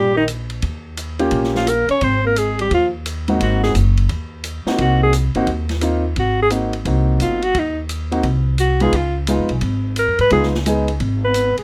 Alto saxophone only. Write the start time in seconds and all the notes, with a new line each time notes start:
Already playing: G4
0.17 D#4
1.57 F4
1.69 A#4
1.91 C#5
2.04 C5
2.27 A#4
2.39 G#4
2.61 G4
2.74 F4
3.43 F#4
3.63 G#4
4.82 F#4
5.03 G#4
6.19 F#4
6.43 G#4
7.22 F4
7.44 F#4
7.59 D#4
8.60 F#4
8.82 G#4
8.96 F4
9.99 A#4
10.21 B4
10.33 G#4
11.25 B4
11.59 G#4